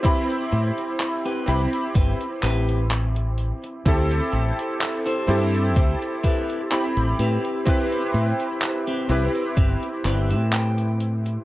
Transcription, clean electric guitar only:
0.00 0.35 C4 medium
0.00 0.35 G4 medium
0.00 0.35 B4 loud
0.52 muted clean electric guitar stroke loud
0.78 muted clean electric guitar stroke soft
1.25 1.60 C4 medium
1.25 1.61 G4 medium
1.25 1.61 B4 loud
1.95 2.21 C4 medium
1.95 2.21 G4 medium
1.95 2.21 B4 medium
2.42 2.79 C4 loud
2.42 2.79 G4 medium
2.42 2.79 B4 loud
3.16 muted clean electric guitar stroke soft
3.63 muted clean electric guitar stroke soft
4.33 muted clean electric guitar stroke loud
4.58 muted clean electric guitar stroke soft
5.06 5.41 E4 medium
5.06 5.42 G4 medium
5.06 5.42 C5 medium
5.76 6.02 E4 medium
5.76 6.02 G4 medium
5.76 6.02 C5 medium
6.24 6.61 E4 loud
6.24 6.61 G4 loud
6.24 6.61 B4 loud
6.97 muted clean electric guitar stroke soft
7.19 7.97 C4 medium
7.19 7.97 G4 medium
7.19 7.97 B4 loud
8.14 muted clean electric guitar stroke loud
8.40 muted clean electric guitar stroke soft
8.87 9.22 C4 medium
8.87 9.23 G4 medium
8.87 9.23 B4 loud
9.57 9.83 C4 medium
9.57 9.83 G4 medium
9.57 9.83 B4 medium
10.05 10.42 C4 medium
10.05 10.42 G4 medium
10.05 10.42 B4 loud
10.05 10.29 D5 medium
10.30 10.51 E5 medium
10.52 11.44 G5 medium
10.78 muted clean electric guitar stroke soft
11.25 muted clean electric guitar stroke soft

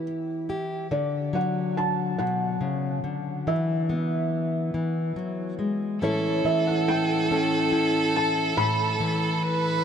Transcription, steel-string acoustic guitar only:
0.00 0.92 E3 medium
0.00 0.48 E4 soft
0.00 0.48 G4 medium
0.49 0.86 E4 soft
0.49 0.87 G4 medium
0.91 2.19 D3 medium
1.33 3.42 F#3 medium
2.19 2.60 B2 medium
2.61 3.03 C#3 medium
3.04 3.47 D3 medium
3.47 4.74 E3 medium
3.89 6.02 B3 medium
4.74 5.16 E3 medium
5.16 5.58 F#3 soft
5.59 6.02 G#3 medium
6.01 8.51 A2 medium
6.01 6.44 E3 medium
6.01 7.31 C#4 medium
6.01 7.31 E4 medium
6.01 7.32 A4 medium
6.45 8.99 E3 medium
7.31 8.53 C#4 medium
7.31 7.71 E4 medium
7.31 8.53 A4 medium
7.72 8.52 E4 medium
8.57 9.84 A2 medium
9.00 9.84 E3 medium

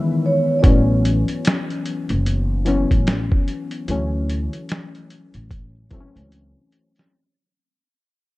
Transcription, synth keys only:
0.00 0.37 D#3 medium
0.00 0.35 E3 medium
0.00 0.36 G#3 medium
0.00 0.37 B3 medium
0.62 1.86 E3 medium
0.62 1.87 F#3 medium
0.62 1.87 B3 medium
0.62 1.88 C#4 medium
2.65 3.60 E3 medium
2.65 3.61 F#3 medium
2.65 3.61 B3 medium
2.65 3.62 C#4 medium
3.88 5.11 E3 medium
3.88 5.12 F#3 medium
3.88 5.12 A3 medium
3.88 5.13 C#4 medium
5.91 6.85 E3 medium
5.91 6.86 F#3 medium
5.91 6.86 A3 medium
5.91 6.00 C4 medium
6.00 6.90 C#4 medium

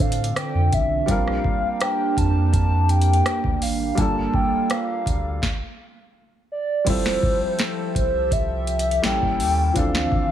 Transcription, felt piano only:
0.00 1.05 E3 medium
0.00 1.03 F3 medium
0.00 1.04 C4 medium
0.00 1.05 D4 medium
0.00 1.06 A4 medium
1.06 3.92 G3 medium
1.06 3.93 C4 medium
1.06 3.94 D4 medium
1.06 3.94 F4 medium
1.11 3.95 A#4 medium
3.95 5.38 G3 medium
3.95 5.39 A#3 medium
3.95 5.39 D4 medium
3.95 5.40 F4 medium
4.00 5.41 A4 medium
6.84 8.98 G3 medium
6.84 8.99 C4 medium
6.84 9.00 E4 medium
6.84 9.00 F4 medium
6.90 9.01 A4 medium
9.02 9.75 G3 medium
9.02 9.76 A#3 medium
9.02 9.76 C#4 medium
9.02 9.76 E4 medium
9.02 9.77 A4 medium
9.73 10.31 E3 medium
9.73 10.31 F3 medium
9.73 10.31 C4 medium
9.73 10.31 D4 medium
9.79 10.31 A4 medium

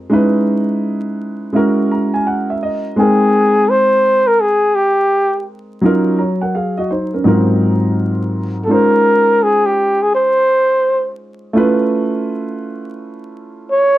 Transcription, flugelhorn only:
2.99 3.72 G#4 medium
3.70 4.29 C5 loud
4.27 4.42 A#4 medium
4.41 4.77 G#4 loud
4.75 5.47 G4 medium
8.65 8.74 A4 medium
8.72 9.45 A#4 medium
9.43 9.67 G#4 medium
9.66 10.04 G4 medium
10.02 10.13 G#4 medium
10.15 11.16 C5 loud
13.71 13.98 C#5 loud

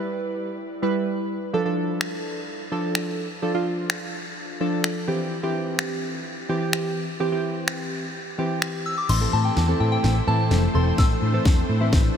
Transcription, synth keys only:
0.00 0.50 G3 medium
0.00 0.51 E4 medium
0.00 0.51 B4 loud
0.82 1.38 G3 medium
0.82 1.38 E4 medium
0.82 1.38 B4 loud
1.53 1.63 F3 medium
1.53 1.63 D4 medium
1.53 1.63 A4 loud
1.65 2.39 F3 medium
1.65 2.40 D4 medium
1.65 2.40 A4 loud
2.71 3.27 F3 medium
2.71 3.27 D4 medium
2.71 3.27 A4 loud
3.42 3.52 F3 loud
3.42 3.52 D4 medium
3.42 3.52 A4 loud
3.54 4.28 F3 medium
3.54 4.29 D4 medium
3.54 4.29 F4 loud
4.60 5.08 F3 medium
4.60 5.08 D4 medium
4.60 5.08 A4 loud
5.08 5.36 E3 medium
5.08 5.36 C4 medium
5.08 5.36 G4 loud
5.43 6.17 E3 medium
5.43 6.17 C4 medium
5.43 6.18 G4 loud
6.49 7.05 E3 medium
6.49 7.05 C4 medium
6.49 7.05 G4 loud
7.20 7.29 E3 medium
7.20 7.30 C4 medium
7.20 7.30 G4 loud
7.32 8.06 E3 medium
7.32 8.06 C4 medium
7.32 8.07 G4 loud
8.38 8.94 E3 medium
8.38 8.94 C4 medium
8.38 8.94 G4 loud
9.21 9.58 E3 medium
9.21 9.58 C4 medium
9.21 9.58 A4 medium
9.68 10.15 E3 medium
9.68 10.15 C4 medium
9.68 10.15 A4 medium
10.27 10.64 E3 medium
10.27 10.64 C4 medium
10.27 10.65 A4 medium
10.74 11.21 E3 medium
10.74 11.21 C4 medium
10.74 11.21 A4 medium
11.33 11.71 E3 medium
11.33 11.71 C4 medium
11.33 11.71 A4 medium
11.80 12.17 E3 medium
11.80 12.17 C4 medium
11.80 12.17 E4 medium

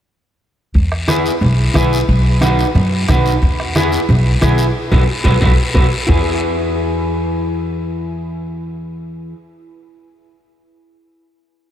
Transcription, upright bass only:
0.75 1.28 E2 medium
1.41 1.68 B1 medium
1.75 2.02 B1 medium
2.08 2.62 B1 loud
2.75 3.02 F#2 medium
3.09 3.36 B1 medium
3.42 3.96 E2 loud
4.09 4.35 B1 medium
4.42 4.69 B1 medium
4.92 5.05 B1 medium
5.26 5.38 B1 loud
5.42 5.54 B1 medium
5.75 5.88 B1 medium
6.09 9.33 E2 medium

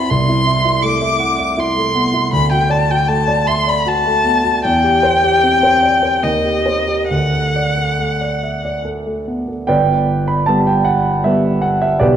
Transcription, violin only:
0.00 0.11 B5 medium
0.10 0.84 C6 medium
0.82 1.61 D6 medium
1.59 2.33 C6 medium
2.34 2.52 B5 medium
2.52 2.73 G5 medium
2.71 2.92 A5 medium
2.91 3.10 G5 medium
3.08 3.49 A5 medium
3.47 3.71 C6 medium
3.69 3.90 B5 medium
3.88 4.64 A5 medium
4.65 6.25 G5 medium
6.23 7.09 D#5 medium
7.09 8.80 F#5 medium

